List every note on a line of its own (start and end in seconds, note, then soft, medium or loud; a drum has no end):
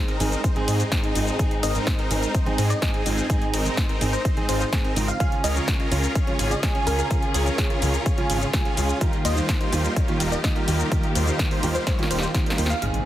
0.00 0.17 G#2 medium
0.00 0.17 G#3 medium
0.00 5.16 G#3 medium
0.00 0.17 C4 medium
0.00 5.16 C4 medium
0.00 0.17 D#4 medium
0.00 5.16 D#4 medium
0.00 0.20 G#4 loud
0.00 0.18 C5 medium
0.08 0.41 C4 medium
0.08 0.41 D#4 medium
0.08 0.41 A#4 loud
0.08 closed hi-hat soft
0.20 0.36 G#1 loud
0.20 0.30 G#2 loud
0.20 0.30 G#3 medium
0.20 0.30 C4 medium
0.20 0.30 D#4 medium
0.20 0.31 G#4 loud
0.20 open hi-hat loud
0.20 ride medium
0.20 shaker medium
0.32 closed hi-hat soft
0.32 shaker soft
0.44 0.65 C4 medium
0.44 0.65 D#4 medium
0.44 0.65 C5 medium
0.44 kick loud
0.44 closed hi-hat medium
0.44 shaker soft
0.55 0.89 G#2 loud
0.55 0.89 G#3 medium
0.55 0.89 C4 medium
0.55 0.89 D#4 medium
0.55 0.89 G#4 loud
0.55 closed hi-hat soft
0.68 0.83 G#2 medium
0.68 0.83 C4 medium
0.68 0.83 D#4 medium
0.68 0.83 G#4 medium
0.68 open hi-hat loud
0.68 ride medium
0.68 shaker medium
0.80 closed hi-hat soft
0.80 shaker soft
0.91 1.12 G#2 medium
0.91 1.12 G#3 medium
0.91 1.13 C4 medium
0.91 1.13 D#4 medium
0.91 1.13 G#4 medium
0.91 kick loud
0.91 snare loud
0.91 closed hi-hat loud
0.91 shaker soft
1.04 1.36 C4 medium
1.04 1.36 D#4 medium
1.04 1.36 G#4 medium
1.04 closed hi-hat soft
1.15 1.31 G#1 loud
1.15 1.36 G#2 medium
1.15 1.36 G#3 medium
1.15 1.36 C4 medium
1.15 1.37 D#4 medium
1.15 1.37 F4 loud
1.15 open hi-hat loud
1.15 ride medium
1.15 shaker medium
1.27 closed hi-hat soft
1.27 shaker soft
1.39 1.72 G#2 medium
1.39 1.72 G#3 medium
1.39 1.55 C4 medium
1.39 1.72 C4 medium
1.39 1.55 D#4 medium
1.39 1.72 D#4 medium
1.39 1.54 G#4 medium
1.39 1.72 G#4 loud
1.39 kick loud
1.39 closed hi-hat loud
1.39 shaker soft
1.51 closed hi-hat soft
1.63 1.78 G#1 loud
1.63 1.87 C4 medium
1.63 1.87 D#4 medium
1.63 1.87 A#4 medium
1.63 1.74 D#5 loud
1.63 open hi-hat loud
1.63 ride medium
1.63 shaker medium
1.74 2.08 G#2 medium
1.74 2.08 G#3 medium
1.74 2.08 C4 medium
1.74 2.08 D#4 medium
1.74 2.08 C5 medium
1.74 closed hi-hat soft
1.74 shaker soft
1.87 kick loud
1.87 snare loud
1.87 closed hi-hat medium
1.87 shaker soft
1.99 2.32 C4 medium
1.99 2.32 D#4 medium
1.99 2.32 A#4 loud
1.99 closed hi-hat soft
2.10 2.26 G#1 loud
2.10 2.20 G#2 loud
2.10 2.21 G#3 medium
2.10 2.21 C4 medium
2.10 2.21 D#4 medium
2.10 2.21 G#4 loud
2.10 open hi-hat loud
2.10 ride medium
2.10 shaker medium
2.23 closed hi-hat soft
2.23 shaker soft
2.34 2.55 C4 medium
2.34 2.55 D#4 medium
2.34 2.55 C5 medium
2.34 kick loud
2.34 closed hi-hat medium
2.34 shaker soft
2.46 2.79 G#2 loud
2.46 2.79 G#3 medium
2.46 2.79 C4 medium
2.46 2.79 D#4 medium
2.46 2.80 G#4 loud
2.46 closed hi-hat soft
2.58 2.74 G#2 medium
2.58 2.74 C4 medium
2.58 2.74 D#4 medium
2.58 2.74 G#4 medium
2.58 open hi-hat loud
2.58 ride medium
2.58 shaker medium
2.70 2.82 D#5 loud
2.70 closed hi-hat soft
2.70 shaker soft
2.81 3.03 G#2 medium
2.81 3.03 G#3 medium
2.81 3.03 C4 medium
2.81 3.03 D#4 medium
2.81 3.03 G#4 medium
2.81 kick loud
2.81 snare loud
2.81 closed hi-hat loud
2.81 shaker soft
2.94 3.27 C4 medium
2.94 3.27 D#4 medium
2.94 3.27 G#4 medium
2.94 closed hi-hat soft
3.05 3.21 G#1 loud
3.05 3.27 G#2 medium
3.05 3.27 G#3 medium
3.05 3.27 C4 medium
3.05 3.27 D#4 medium
3.05 3.27 F4 loud
3.05 open hi-hat loud
3.05 ride medium
3.05 shaker medium
3.18 closed hi-hat soft
3.18 shaker soft
3.29 3.62 G#2 medium
3.29 3.62 G#3 medium
3.29 3.45 C4 medium
3.29 3.63 C4 medium
3.29 3.45 D#4 medium
3.29 3.63 D#4 medium
3.29 3.45 G#4 medium
3.29 3.63 G#4 medium
3.29 kick loud
3.29 closed hi-hat medium
3.29 shaker soft
3.42 closed hi-hat soft
3.54 3.69 G#1 loud
3.54 3.78 C4 medium
3.54 3.78 D#4 medium
3.54 3.78 A#4 medium
3.54 open hi-hat loud
3.54 ride medium
3.54 shaker medium
3.65 3.98 G#2 medium
3.65 3.98 G#3 medium
3.65 3.98 C4 medium
3.65 3.98 D#4 medium
3.65 3.99 C5 medium
3.65 closed hi-hat soft
3.65 shaker soft
3.77 kick loud
3.77 snare loud
3.77 closed hi-hat medium
3.77 shaker soft
3.89 4.22 C4 medium
3.89 4.22 D#4 medium
3.89 4.22 A#4 loud
3.89 closed hi-hat soft
4.00 4.17 G#1 loud
4.00 4.11 G#2 loud
4.00 4.11 G#3 medium
4.00 4.11 C4 medium
4.00 4.11 D#4 medium
4.00 4.12 G#4 loud
4.00 open hi-hat loud
4.00 ride medium
4.00 shaker medium
4.13 4.24 C5 medium
4.13 closed hi-hat soft
4.13 shaker soft
4.25 4.46 C4 medium
4.25 4.46 D#4 medium
4.25 4.46 C5 medium
4.25 kick loud
4.25 closed hi-hat medium
4.25 shaker soft
4.36 4.69 G#2 loud
4.36 4.70 G#3 medium
4.36 4.70 C4 medium
4.36 4.70 D#4 medium
4.36 4.70 G#4 loud
4.36 closed hi-hat soft
4.49 4.64 G#1 loud
4.49 4.64 C4 medium
4.49 4.64 D#4 medium
4.49 4.64 F4 medium
4.49 4.56 C5 medium
4.49 open hi-hat loud
4.49 ride medium
4.49 shaker medium
4.61 4.68 C5 medium
4.61 closed hi-hat soft
4.61 shaker soft
4.72 4.93 G#2 medium
4.72 4.93 G#3 medium
4.72 4.94 C4 medium
4.72 4.94 D#4 medium
4.72 4.94 G#4 medium
4.72 kick loud
4.72 snare loud
4.72 closed hi-hat medium
4.72 shaker soft
4.84 5.09 C4 medium
4.84 5.09 D#4 medium
4.84 5.09 A#4 medium
4.84 closed hi-hat soft
4.96 5.12 G#1 loud
4.96 5.17 C#3 medium
4.96 5.17 G#3 medium
4.96 5.17 C4 medium
4.96 5.18 D#4 medium
4.96 5.18 F4 loud
4.96 open hi-hat loud
4.96 ride medium
4.96 shaker medium
5.08 5.16 F5 medium
5.08 closed hi-hat soft
5.08 shaker soft
5.20 5.53 C#3 medium
5.20 8.97 C#3 medium
5.20 5.53 G#3 medium
5.20 8.97 C#4 medium
5.20 5.35 C#4 medium
5.20 5.53 C#4 medium
5.20 12.78 F4 medium
5.20 5.35 F4 medium
5.20 5.53 F4 medium
5.20 8.97 G#4 medium
5.20 5.35 G#4 medium
5.20 5.53 G#4 medium
5.20 5.28 F5 medium
5.20 kick loud
5.20 closed hi-hat medium
5.20 shaker soft
5.32 closed hi-hat soft
5.44 5.59 C#2 loud
5.44 5.68 C#4 medium
5.44 5.68 F4 medium
5.44 5.68 A#4 medium
5.44 5.55 D#5 loud
5.44 open hi-hat loud
5.44 ride medium
5.44 shaker medium
5.55 5.89 C#3 medium
5.55 5.89 G#3 medium
5.55 5.89 C#4 medium
5.55 5.89 F4 medium
5.55 5.89 C#5 medium
5.55 closed hi-hat soft
5.55 shaker soft
5.68 kick loud
5.68 snare loud
5.68 closed hi-hat medium
5.68 shaker soft
5.80 6.13 C#4 medium
5.80 6.13 F4 medium
5.80 6.13 A#4 loud
5.80 closed hi-hat soft
5.91 6.07 C#2 loud
5.91 6.01 C#3 loud
5.91 6.02 G#3 medium
5.91 6.02 C#4 medium
5.91 6.02 F4 medium
5.91 6.02 G#4 loud
5.91 open hi-hat loud
5.91 ride medium
5.91 shaker medium
6.04 closed hi-hat soft
6.04 shaker soft
6.15 6.36 C#4 medium
6.15 6.36 F4 medium
6.15 6.36 C#5 medium
6.15 kick loud
6.15 closed hi-hat medium
6.15 shaker soft
6.27 6.60 C#3 loud
6.27 6.60 G#3 medium
6.27 6.60 C#4 medium
6.27 6.60 F4 medium
6.27 6.61 G#4 loud
6.27 closed hi-hat soft
6.39 6.55 G#1 medium
6.39 6.54 C#4 medium
6.39 6.54 F4 medium
6.39 6.54 G#4 medium
6.39 open hi-hat loud
6.39 ride medium
6.39 shaker medium
6.51 6.63 D#5 medium
6.51 closed hi-hat soft
6.51 shaker soft
6.62 6.84 C#3 medium
6.62 6.84 G#3 medium
6.62 6.84 C#4 medium
6.62 6.84 F4 medium
6.62 6.84 G#4 medium
6.62 kick loud
6.62 snare loud
6.62 closed hi-hat medium
6.62 shaker soft
6.75 7.08 C#4 medium
6.75 7.08 F4 medium
6.75 7.08 G#4 medium
6.75 closed hi-hat soft
6.86 7.02 C#2 loud
6.86 7.08 C#3 medium
6.86 7.08 G#3 medium
6.86 7.08 C#4 medium
6.86 7.08 F4 medium
6.86 7.08 G#4 loud
6.86 6.94 A#4 medium
6.86 open hi-hat loud
6.86 ride medium
6.86 shaker medium
6.99 7.06 A#4 medium
6.99 closed hi-hat soft
6.99 shaker soft
7.10 7.43 C#3 medium
7.10 7.43 G#3 medium
7.10 7.26 C#4 medium
7.10 7.44 C#4 medium
7.10 7.26 F4 medium
7.10 7.44 F4 medium
7.10 7.26 G#4 medium
7.10 7.44 G#4 medium
7.10 kick loud
7.10 closed hi-hat medium
7.10 shaker soft
7.23 closed hi-hat soft
7.34 7.50 C#2 loud
7.34 7.59 C#4 medium
7.34 7.59 F4 medium
7.34 7.82 G#4 loud
7.34 7.59 A#4 medium
7.34 open hi-hat loud
7.34 ride medium
7.34 shaker medium
7.46 7.79 C#3 medium
7.46 7.79 G#3 medium
7.46 7.79 C#4 medium
7.46 7.79 F4 medium
7.46 7.80 C#5 medium
7.46 closed hi-hat soft
7.46 shaker soft
7.58 kick loud
7.58 snare loud
7.58 closed hi-hat medium
7.58 shaker soft
7.70 8.03 C#4 medium
7.70 8.03 F4 medium
7.70 8.03 A#4 loud
7.70 closed hi-hat soft
7.82 7.97 C#2 loud
7.82 7.92 C#3 loud
7.82 7.92 G#3 medium
7.82 7.92 C#4 medium
7.82 7.92 F4 medium
7.82 7.92 G#4 loud
7.82 open hi-hat loud
7.82 ride medium
7.82 shaker medium
7.94 closed hi-hat soft
7.94 shaker soft
8.06 8.27 C#4 medium
8.06 8.27 F4 medium
8.06 8.27 C#5 medium
8.06 kick loud
8.06 closed hi-hat medium
8.06 shaker soft
8.17 8.50 C#3 loud
8.17 8.51 G#3 medium
8.17 8.51 C#4 medium
8.17 8.51 F4 medium
8.17 8.51 G#4 loud
8.17 closed hi-hat soft
8.30 8.45 G#1 medium
8.30 8.45 C#4 medium
8.30 8.45 F4 medium
8.30 8.45 G#4 medium
8.30 open hi-hat loud
8.30 ride medium
8.30 shaker medium
8.42 closed hi-hat soft
8.42 shaker soft
8.53 8.74 C#3 medium
8.53 8.74 G#3 medium
8.53 8.75 C#4 medium
8.53 8.75 F4 medium
8.53 8.75 G#4 medium
8.53 kick loud
8.53 snare loud
8.53 closed hi-hat loud
8.53 shaker soft
8.65 8.98 C#4 medium
8.65 8.98 F4 medium
8.65 8.98 G#4 medium
8.65 closed hi-hat soft
8.77 8.93 C#2 loud
8.77 8.98 G#3 medium
8.77 8.98 C#4 medium
8.77 8.98 F4 medium
8.77 8.99 G#4 loud
8.77 open hi-hat loud
8.77 ride medium
8.77 shaker medium
8.89 closed hi-hat soft
8.89 shaker soft
9.01 9.34 D#3 medium
9.01 12.78 D#3 medium
9.01 9.16 G3 medium
9.01 9.34 A#3 medium
9.01 9.16 A#3 medium
9.01 12.78 A#3 medium
9.01 9.34 D#4 medium
9.01 9.16 D#4 medium
9.01 9.16 F4 medium
9.01 9.34 F4 medium
9.01 12.78 G4 loud
9.01 9.34 G4 loud
9.01 9.16 A#4 medium
9.01 kick loud
9.01 closed hi-hat loud
9.01 shaker soft
9.13 closed hi-hat soft
9.25 9.40 D#2 loud
9.25 9.49 G3 medium
9.25 9.49 A#3 medium
9.25 9.49 D#4 medium
9.25 9.49 F4 medium
9.25 9.49 C5 medium
9.25 9.36 D#5 loud
9.25 open hi-hat loud
9.25 ride medium
9.25 shaker medium
9.36 9.69 D#3 medium
9.36 9.70 A#3 medium
9.36 9.70 D#4 medium
9.36 9.70 F4 medium
9.36 9.70 C5 medium
9.36 closed hi-hat soft
9.36 shaker soft
9.49 kick loud
9.49 snare loud
9.49 closed hi-hat loud
9.49 shaker soft
9.61 9.94 G3 medium
9.61 9.94 A#3 medium
9.61 9.94 D#4 medium
9.61 9.94 F4 medium
9.61 9.94 C5 loud
9.61 closed hi-hat soft
9.72 9.88 D#2 loud
9.72 9.82 D#3 loud
9.72 9.83 A#3 medium
9.72 9.83 D#4 medium
9.72 9.83 F4 medium
9.72 9.83 G4 loud
9.72 open hi-hat loud
9.72 ride medium
9.72 shaker medium
9.85 closed hi-hat soft
9.85 shaker soft
9.96 10.17 G3 medium
9.96 10.17 A#3 medium
9.96 10.17 D#4 medium
9.96 10.17 F4 medium
9.96 10.17 C#5 medium
9.96 kick loud
9.96 closed hi-hat loud
9.96 shaker soft
10.08 10.41 D#3 loud
10.08 10.41 A#3 medium
10.08 10.41 D#4 medium
10.08 10.41 F4 medium
10.08 10.41 G4 loud
10.08 closed hi-hat soft
10.20 10.36 D#1 medium
10.20 10.35 G3 medium
10.20 10.35 A#3 medium
10.20 10.35 D#4 medium
10.20 10.35 F4 medium
10.20 10.35 A#4 medium
10.20 open hi-hat loud
10.20 ride medium
10.20 shaker medium
10.32 10.43 D#5 loud
10.32 closed hi-hat soft
10.32 shaker soft
10.43 10.65 D#3 medium
10.43 10.65 A#3 medium
10.43 10.65 D#4 medium
10.43 10.65 F4 medium
10.43 10.65 G4 medium
10.43 kick loud
10.43 snare loud
10.43 closed hi-hat loud
10.43 shaker soft
10.56 10.89 G3 medium
10.56 10.89 A#3 medium
10.56 10.89 D#4 medium
10.56 10.89 F4 medium
10.56 10.89 A#4 medium
10.56 closed hi-hat soft
10.67 10.83 D#2 loud
10.67 10.88 D#3 medium
10.67 10.89 A#3 medium
10.67 10.89 D#4 medium
10.67 10.89 F4 medium
10.67 10.89 G4 loud
10.67 open hi-hat loud
10.67 ride medium
10.67 shaker medium
10.80 closed hi-hat soft
10.80 shaker soft
10.91 11.24 D#3 medium
10.91 11.07 G3 medium
10.91 11.24 A#3 medium
10.91 11.07 A#3 medium
10.91 11.24 D#4 medium
10.91 11.07 D#4 medium
10.91 11.07 F4 medium
10.91 11.25 F4 medium
10.91 11.25 G4 loud
10.91 11.07 A#4 medium
10.91 kick loud
10.91 closed hi-hat loud
10.91 shaker soft
11.04 closed hi-hat soft
11.15 11.31 D#2 loud
11.15 11.40 G3 medium
11.15 11.40 A#3 medium
11.15 11.40 D#4 medium
11.15 11.40 F4 medium
11.15 11.40 C5 medium
11.15 open hi-hat loud
11.15 ride medium
11.15 shaker medium
11.27 11.60 D#3 medium
11.27 11.60 A#3 medium
11.27 11.60 D#4 medium
11.27 11.60 F4 medium
11.27 11.60 C5 medium
11.27 closed hi-hat soft
11.27 shaker soft
11.39 kick loud
11.39 snare loud
11.39 closed hi-hat loud
11.39 shaker soft
11.51 11.84 G3 medium
11.51 11.84 A#3 medium
11.51 11.84 D#4 medium
11.51 11.84 F4 medium
11.51 11.84 C5 loud
11.51 open hi-hat medium
11.62 11.78 D#2 loud
11.62 11.73 D#3 loud
11.62 11.73 A#3 medium
11.62 11.73 D#4 medium
11.62 11.73 F4 medium
11.62 11.73 G4 loud
11.62 open hi-hat loud
11.62 ride medium
11.62 shaker medium
11.75 11.86 C5 loud
11.75 closed hi-hat soft
11.75 shaker soft
11.87 12.08 G3 medium
11.87 12.08 A#3 medium
11.87 12.08 D#4 medium
11.87 12.08 F4 medium
11.87 12.08 C#5 medium
11.87 kick loud
11.87 snare medium
11.87 closed hi-hat loud
11.87 shaker soft
11.98 12.31 D#3 loud
11.98 12.31 A#3 medium
11.98 12.32 D#4 medium
11.98 12.32 F4 medium
11.98 12.32 G4 loud
11.98 closed hi-hat soft
12.03 snare medium
12.11 12.26 D#1 medium
12.11 12.26 G3 medium
12.11 12.26 A#3 medium
12.11 12.26 D#4 medium
12.11 12.26 F4 medium
12.11 12.26 G4 medium
12.11 12.18 C5 medium
12.11 open hi-hat loud
12.11 ride medium
12.11 shaker medium
12.19 12.30 C5 medium
12.19 snare medium
12.19 closed hi-hat soft
12.23 shaker soft
12.34 12.55 D#3 medium
12.34 12.55 A#3 medium
12.34 12.55 D#4 medium
12.34 12.56 F4 medium
12.34 12.56 G4 medium
12.34 kick loud
12.34 snare medium
12.34 closed hi-hat loud
12.34 shaker soft
12.46 12.71 G3 medium
12.46 12.71 A#3 medium
12.46 12.71 D#4 medium
12.46 12.71 F4 medium
12.46 12.71 C5 medium
12.46 closed hi-hat soft
12.50 snare loud
12.58 12.74 D#2 loud
12.58 12.79 A#3 medium
12.58 12.79 D#4 medium
12.58 12.79 F4 medium
12.58 12.80 G4 loud
12.58 open hi-hat loud
12.58 ride medium
12.58 shaker medium
12.66 snare loud
12.70 12.78 F5 medium
12.70 shaker soft
12.81 13.05 G#1 medium
12.81 13.05 G#2 medium
12.81 13.05 G#3 medium
12.81 13.05 C4 medium
12.81 13.05 D#4 medium
12.81 13.05 G#4 medium
12.81 12.90 F5 medium
12.81 closed hi-hat medium
12.81 impact medium
12.94 closed hi-hat soft